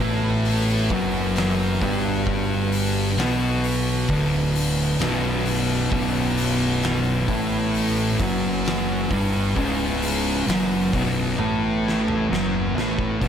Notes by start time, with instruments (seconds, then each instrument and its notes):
Already playing: tonewheel organ B3 F#4 B4
0.00 fingered electric bass A1, distorted electric guitar A2 A3
0.45 open hi-hat
0.90 fingered electric bass F#1, distorted electric guitar F#2 F#3, kick, open hi-hat
1.36 snare, open hi-hat
1.81 fingered electric bass G1, distorted electric guitar G2 G3, kick, open hi-hat
2.27 kick, open hi-hat
2.72 open hi-hat
3.17 fingered electric bass B1, distorted electric guitar B2 B3, snare, open hi-hat
3.64 open hi-hat
4.08 fingered electric bass D1, distorted electric guitar D2 D3, kick, open hi-hat
4.55 open hi-hat
4.99 fingered electric bass B0, distorted electric guitar B1 B2, snare, open hi-hat
5.46 open hi-hat
5.91 fingered electric bass B0, distorted electric guitar B1 B2, tonewheel organ E4, kick, open hi-hat
6.37 open hi-hat
6.82 snare, open hi-hat
7.28 fingered electric bass A1, distorted electric guitar A2 A3, kick, open hi-hat
7.74 open hi-hat
8.19 fingered electric bass F#1, distorted electric guitar F#2 F#3, kick, open hi-hat
8.65 snare, open hi-hat
9.10 fingered electric bass G1, distorted electric guitar G2 G3, kick, open hi-hat
9.56 fingered electric bass C#1, distorted electric guitar C#2 C#3, kick, open hi-hat
10.02 open hi-hat
10.47 fingered electric bass F#1, distorted electric guitar F#2 F#3, snare, open hi-hat
10.93 fingered electric bass B0, distorted electric guitar B1 B2, kick, open hi-hat
11.39 fingered electric bass A1, distorted electric guitar A2 A3, high tom
11.88 snare
12.08 mid tom
12.29 fingered electric bass F#1, distorted electric guitar F#2 F#3
12.33 snare
12.75 fingered electric bass A1, distorted electric guitar A2 A3, snare
12.99 kick
13.21 fingered electric bass B0, distorted electric guitar B1 B2, tonewheel organ B3 F#4 B4, kick, open hi-hat